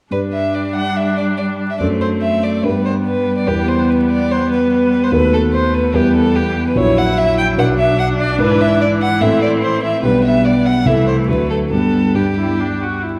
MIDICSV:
0, 0, Header, 1, 5, 480
1, 0, Start_track
1, 0, Key_signature, 1, "major"
1, 0, Tempo, 419287
1, 144, Time_signature, 4, 2, 24, 8
1, 4943, Tempo, 409556
1, 12623, Tempo, 430725
1, 15211, End_track
2, 0, Start_track
2, 0, Title_t, "Violin"
2, 0, Program_c, 0, 40
2, 134, Note_on_c, 0, 71, 56
2, 226, Note_off_c, 0, 71, 0
2, 377, Note_on_c, 0, 76, 51
2, 624, Note_on_c, 0, 74, 45
2, 642, Note_off_c, 0, 76, 0
2, 858, Note_off_c, 0, 74, 0
2, 865, Note_on_c, 0, 78, 56
2, 1108, Note_on_c, 0, 76, 52
2, 1125, Note_off_c, 0, 78, 0
2, 1335, Note_off_c, 0, 76, 0
2, 1342, Note_on_c, 0, 74, 53
2, 1434, Note_off_c, 0, 74, 0
2, 1574, Note_on_c, 0, 74, 53
2, 1666, Note_off_c, 0, 74, 0
2, 1948, Note_on_c, 0, 76, 48
2, 2043, Note_off_c, 0, 76, 0
2, 2050, Note_on_c, 0, 74, 61
2, 2142, Note_off_c, 0, 74, 0
2, 2301, Note_on_c, 0, 72, 55
2, 2393, Note_off_c, 0, 72, 0
2, 2536, Note_on_c, 0, 76, 64
2, 2785, Note_on_c, 0, 74, 52
2, 2802, Note_off_c, 0, 76, 0
2, 3027, Note_on_c, 0, 71, 55
2, 3044, Note_off_c, 0, 74, 0
2, 3260, Note_off_c, 0, 71, 0
2, 3267, Note_on_c, 0, 72, 57
2, 3358, Note_off_c, 0, 72, 0
2, 3500, Note_on_c, 0, 71, 55
2, 3854, Note_off_c, 0, 71, 0
2, 3865, Note_on_c, 0, 74, 46
2, 3979, Note_on_c, 0, 67, 60
2, 3996, Note_off_c, 0, 74, 0
2, 4220, Note_on_c, 0, 72, 56
2, 4237, Note_off_c, 0, 67, 0
2, 4469, Note_on_c, 0, 71, 50
2, 4486, Note_off_c, 0, 72, 0
2, 4691, Note_off_c, 0, 71, 0
2, 4698, Note_on_c, 0, 74, 61
2, 4941, Note_on_c, 0, 72, 55
2, 4959, Note_off_c, 0, 74, 0
2, 5173, Note_off_c, 0, 72, 0
2, 5180, Note_on_c, 0, 71, 58
2, 5417, Note_off_c, 0, 71, 0
2, 5426, Note_on_c, 0, 71, 60
2, 5788, Note_on_c, 0, 72, 52
2, 5805, Note_off_c, 0, 71, 0
2, 5884, Note_on_c, 0, 71, 69
2, 5901, Note_off_c, 0, 72, 0
2, 6129, Note_off_c, 0, 71, 0
2, 6137, Note_on_c, 0, 69, 58
2, 6231, Note_off_c, 0, 69, 0
2, 6369, Note_on_c, 0, 72, 69
2, 6617, Note_on_c, 0, 71, 59
2, 6635, Note_off_c, 0, 72, 0
2, 6856, Note_on_c, 0, 67, 64
2, 6874, Note_off_c, 0, 71, 0
2, 7092, Note_off_c, 0, 67, 0
2, 7099, Note_on_c, 0, 69, 66
2, 7336, Note_on_c, 0, 67, 62
2, 7354, Note_off_c, 0, 69, 0
2, 7697, Note_off_c, 0, 67, 0
2, 7711, Note_on_c, 0, 71, 55
2, 7819, Note_on_c, 0, 73, 77
2, 7837, Note_off_c, 0, 71, 0
2, 8065, Note_on_c, 0, 78, 71
2, 8082, Note_off_c, 0, 73, 0
2, 8296, Note_on_c, 0, 76, 73
2, 8313, Note_off_c, 0, 78, 0
2, 8526, Note_off_c, 0, 76, 0
2, 8533, Note_on_c, 0, 79, 74
2, 8627, Note_off_c, 0, 79, 0
2, 8776, Note_on_c, 0, 78, 66
2, 8870, Note_off_c, 0, 78, 0
2, 9007, Note_on_c, 0, 76, 74
2, 9246, Note_off_c, 0, 76, 0
2, 9253, Note_on_c, 0, 78, 75
2, 9346, Note_off_c, 0, 78, 0
2, 9496, Note_on_c, 0, 74, 66
2, 9729, Note_off_c, 0, 74, 0
2, 9736, Note_on_c, 0, 71, 78
2, 9974, Note_on_c, 0, 76, 72
2, 9992, Note_off_c, 0, 71, 0
2, 10201, Note_off_c, 0, 76, 0
2, 10208, Note_on_c, 0, 74, 72
2, 10302, Note_off_c, 0, 74, 0
2, 10454, Note_on_c, 0, 78, 77
2, 10681, Note_on_c, 0, 76, 68
2, 10699, Note_off_c, 0, 78, 0
2, 10917, Note_off_c, 0, 76, 0
2, 10924, Note_on_c, 0, 74, 69
2, 11017, Note_off_c, 0, 74, 0
2, 11164, Note_on_c, 0, 72, 62
2, 11396, Note_off_c, 0, 72, 0
2, 11403, Note_on_c, 0, 76, 65
2, 11633, Note_off_c, 0, 76, 0
2, 11640, Note_on_c, 0, 71, 74
2, 11883, Note_off_c, 0, 71, 0
2, 11890, Note_on_c, 0, 76, 68
2, 12129, Note_on_c, 0, 74, 58
2, 12147, Note_off_c, 0, 76, 0
2, 12377, Note_on_c, 0, 78, 66
2, 12394, Note_off_c, 0, 74, 0
2, 12618, Note_on_c, 0, 76, 58
2, 12635, Note_off_c, 0, 78, 0
2, 12842, Note_off_c, 0, 76, 0
2, 12849, Note_on_c, 0, 72, 57
2, 12938, Note_off_c, 0, 72, 0
2, 13085, Note_on_c, 0, 71, 55
2, 13320, Note_off_c, 0, 71, 0
2, 13325, Note_on_c, 0, 69, 44
2, 13414, Note_off_c, 0, 69, 0
2, 13564, Note_on_c, 0, 69, 58
2, 14052, Note_on_c, 0, 67, 46
2, 14069, Note_off_c, 0, 69, 0
2, 15021, Note_off_c, 0, 67, 0
2, 15211, End_track
3, 0, Start_track
3, 0, Title_t, "Grand piano"
3, 0, Program_c, 1, 0
3, 123, Note_on_c, 1, 43, 36
3, 129, Note_on_c, 1, 62, 28
3, 134, Note_on_c, 1, 67, 31
3, 139, Note_on_c, 1, 74, 28
3, 375, Control_c, 1, 64, 127
3, 2013, Note_off_c, 1, 43, 0
3, 2016, Note_off_c, 1, 62, 0
3, 2018, Note_off_c, 1, 67, 0
3, 2021, Note_off_c, 1, 74, 0
3, 2057, Note_on_c, 1, 42, 36
3, 2060, Note_on_c, 1, 62, 31
3, 2067, Note_on_c, 1, 69, 30
3, 2073, Note_on_c, 1, 72, 29
3, 2090, Control_c, 1, 64, 0
3, 2299, Control_c, 1, 64, 127
3, 2999, Note_off_c, 1, 42, 0
3, 3000, Note_off_c, 1, 62, 0
3, 3004, Note_off_c, 1, 69, 0
3, 3007, Note_off_c, 1, 72, 0
3, 3019, Note_on_c, 1, 43, 39
3, 3020, Note_on_c, 1, 62, 31
3, 3028, Note_on_c, 1, 67, 31
3, 3036, Note_on_c, 1, 71, 33
3, 3054, Control_c, 1, 64, 0
3, 3251, Control_c, 1, 64, 127
3, 3949, Note_off_c, 1, 43, 0
3, 3949, Note_off_c, 1, 62, 0
3, 3954, Note_off_c, 1, 67, 0
3, 3958, Note_off_c, 1, 71, 0
3, 3969, Note_on_c, 1, 40, 40
3, 3975, Note_on_c, 1, 64, 31
3, 3984, Note_on_c, 1, 67, 31
3, 3985, Note_on_c, 1, 71, 33
3, 4009, Control_c, 1, 64, 0
3, 4227, Control_c, 1, 64, 127
3, 5844, Note_off_c, 1, 40, 0
3, 5847, Note_off_c, 1, 64, 0
3, 5852, Note_off_c, 1, 67, 0
3, 5852, Note_off_c, 1, 71, 0
3, 5879, Note_on_c, 1, 39, 40
3, 5885, Note_on_c, 1, 66, 36
3, 5890, Note_on_c, 1, 69, 35
3, 5896, Note_on_c, 1, 71, 35
3, 5922, Control_c, 1, 64, 0
3, 6092, Control_c, 1, 64, 127
3, 6819, Note_off_c, 1, 39, 0
3, 6822, Note_off_c, 1, 66, 0
3, 6825, Note_off_c, 1, 69, 0
3, 6828, Note_off_c, 1, 71, 0
3, 6842, Note_on_c, 1, 40, 47
3, 6849, Note_on_c, 1, 64, 39
3, 6855, Note_on_c, 1, 67, 38
3, 6862, Note_on_c, 1, 71, 38
3, 6880, Control_c, 1, 64, 0
3, 7089, Control_c, 1, 64, 127
3, 7781, Note_off_c, 1, 40, 0
3, 7784, Note_off_c, 1, 64, 0
3, 7787, Note_off_c, 1, 67, 0
3, 7791, Note_off_c, 1, 71, 0
3, 7797, Note_on_c, 1, 34, 45
3, 7809, Note_on_c, 1, 64, 37
3, 7811, Note_on_c, 1, 66, 41
3, 7818, Note_on_c, 1, 73, 37
3, 7843, Control_c, 1, 64, 0
3, 8018, Control_c, 1, 64, 127
3, 8739, Note_off_c, 1, 34, 0
3, 8745, Note_off_c, 1, 64, 0
3, 8745, Note_off_c, 1, 66, 0
3, 8750, Note_off_c, 1, 73, 0
3, 8754, Note_on_c, 1, 35, 52
3, 8756, Note_on_c, 1, 62, 39
3, 8762, Note_on_c, 1, 66, 41
3, 8771, Note_on_c, 1, 71, 39
3, 8802, Control_c, 1, 64, 0
3, 8956, Control_c, 1, 64, 127
3, 9697, Note_off_c, 1, 35, 0
3, 9698, Note_off_c, 1, 62, 0
3, 9701, Note_off_c, 1, 66, 0
3, 9706, Note_off_c, 1, 71, 0
3, 9712, Note_on_c, 1, 44, 47
3, 9718, Note_on_c, 1, 62, 38
3, 9723, Note_on_c, 1, 64, 37
3, 9729, Note_on_c, 1, 71, 37
3, 9762, Control_c, 1, 64, 0
3, 9974, Control_c, 1, 64, 127
3, 10650, Note_off_c, 1, 44, 0
3, 10653, Note_off_c, 1, 62, 0
3, 10656, Note_off_c, 1, 64, 0
3, 10659, Note_off_c, 1, 71, 0
3, 10673, Note_on_c, 1, 45, 48
3, 10682, Note_on_c, 1, 60, 38
3, 10685, Note_on_c, 1, 64, 40
3, 10694, Note_on_c, 1, 69, 41
3, 10713, Control_c, 1, 64, 0
3, 10919, Control_c, 1, 64, 127
3, 11609, Note_off_c, 1, 45, 0
3, 11614, Note_off_c, 1, 60, 0
3, 11615, Note_off_c, 1, 64, 0
3, 11620, Note_off_c, 1, 69, 0
3, 11630, Note_on_c, 1, 35, 44
3, 11633, Note_on_c, 1, 59, 39
3, 11642, Note_on_c, 1, 62, 38
3, 11646, Note_on_c, 1, 67, 40
3, 11672, Control_c, 1, 64, 0
3, 11885, Control_c, 1, 64, 127
3, 12581, Note_off_c, 1, 35, 0
3, 12583, Note_off_c, 1, 59, 0
3, 12587, Note_off_c, 1, 62, 0
3, 12590, Note_off_c, 1, 67, 0
3, 12601, Note_on_c, 1, 36, 44
3, 12608, Note_on_c, 1, 57, 35
3, 12613, Note_on_c, 1, 64, 35
3, 12617, Note_on_c, 1, 69, 33
3, 12641, Control_c, 1, 64, 0
3, 12810, Control_c, 1, 64, 127
3, 13062, Note_off_c, 1, 57, 0
3, 13065, Note_off_c, 1, 36, 0
3, 13071, Note_off_c, 1, 64, 0
3, 13073, Note_off_c, 1, 69, 0
3, 13075, Note_on_c, 1, 38, 35
3, 13079, Note_on_c, 1, 57, 30
3, 13088, Note_on_c, 1, 62, 29
3, 13092, Note_on_c, 1, 66, 32
3, 13108, Control_c, 1, 64, 0
3, 13287, Control_c, 1, 64, 127
3, 13545, Note_off_c, 1, 38, 0
3, 13548, Note_off_c, 1, 57, 0
3, 13551, Note_off_c, 1, 62, 0
3, 13554, Note_off_c, 1, 66, 0
3, 13554, Note_on_c, 1, 43, 34
3, 13559, Note_on_c, 1, 59, 29
3, 13568, Note_on_c, 1, 62, 28
3, 13571, Note_on_c, 1, 67, 31
3, 13587, Control_c, 1, 64, 0
3, 13769, Control_c, 1, 64, 127
3, 14023, Note_off_c, 1, 43, 0
3, 14027, Note_off_c, 1, 59, 0
3, 14030, Note_off_c, 1, 62, 0
3, 14039, Note_off_c, 1, 67, 0
3, 14040, Note_on_c, 1, 43, 37
3, 14044, Note_on_c, 1, 59, 29
3, 14047, Note_on_c, 1, 62, 29
3, 14056, Note_on_c, 1, 67, 30
3, 15211, Note_off_c, 1, 43, 0
3, 15211, Note_off_c, 1, 59, 0
3, 15211, Note_off_c, 1, 62, 0
3, 15211, Note_off_c, 1, 67, 0
3, 15211, End_track
4, 0, Start_track
4, 0, Title_t, "Viola"
4, 0, Program_c, 2, 41
4, 150, Note_on_c, 2, 62, 43
4, 2081, Note_on_c, 2, 60, 38
4, 2098, Note_off_c, 2, 62, 0
4, 3043, Note_on_c, 2, 59, 43
4, 3060, Note_off_c, 2, 60, 0
4, 6849, Note_off_c, 2, 59, 0
4, 6856, Note_on_c, 2, 59, 50
4, 7797, Note_off_c, 2, 59, 0
4, 7823, Note_on_c, 2, 64, 50
4, 8782, Note_on_c, 2, 62, 56
4, 8799, Note_off_c, 2, 64, 0
4, 10698, Note_on_c, 2, 60, 53
4, 10716, Note_off_c, 2, 62, 0
4, 11655, Note_on_c, 2, 59, 50
4, 11673, Note_off_c, 2, 60, 0
4, 12620, Note_on_c, 2, 57, 46
4, 12637, Note_off_c, 2, 59, 0
4, 13567, Note_off_c, 2, 57, 0
4, 13576, Note_on_c, 2, 59, 36
4, 14000, Note_off_c, 2, 59, 0
4, 14062, Note_on_c, 2, 59, 39
4, 14151, Note_off_c, 2, 59, 0
4, 14294, Note_on_c, 2, 64, 46
4, 14549, Note_on_c, 2, 62, 40
4, 14566, Note_off_c, 2, 64, 0
4, 14784, Note_on_c, 2, 66, 43
4, 14801, Note_off_c, 2, 62, 0
4, 15024, Note_on_c, 2, 64, 40
4, 15041, Note_off_c, 2, 66, 0
4, 15211, Note_off_c, 2, 64, 0
4, 15211, End_track
5, 0, Start_track
5, 0, Title_t, "Cello"
5, 0, Program_c, 3, 42
5, 151, Note_on_c, 3, 55, 38
5, 2027, Note_off_c, 3, 55, 0
5, 2075, Note_on_c, 3, 57, 39
5, 3042, Note_on_c, 3, 55, 41
5, 3059, Note_off_c, 3, 57, 0
5, 5899, Note_off_c, 3, 55, 0
5, 5906, Note_on_c, 3, 57, 48
5, 6860, Note_on_c, 3, 55, 45
5, 6878, Note_off_c, 3, 57, 0
5, 7813, Note_off_c, 3, 55, 0
5, 7820, Note_on_c, 3, 54, 52
5, 9692, Note_off_c, 3, 54, 0
5, 9736, Note_on_c, 3, 52, 53
5, 11609, Note_off_c, 3, 52, 0
5, 11654, Note_on_c, 3, 55, 50
5, 12620, Note_on_c, 3, 52, 41
5, 12637, Note_off_c, 3, 55, 0
5, 13092, Note_on_c, 3, 54, 42
5, 13109, Note_off_c, 3, 52, 0
5, 13573, Note_on_c, 3, 55, 41
5, 13590, Note_off_c, 3, 54, 0
5, 15211, Note_off_c, 3, 55, 0
5, 15211, End_track
0, 0, End_of_file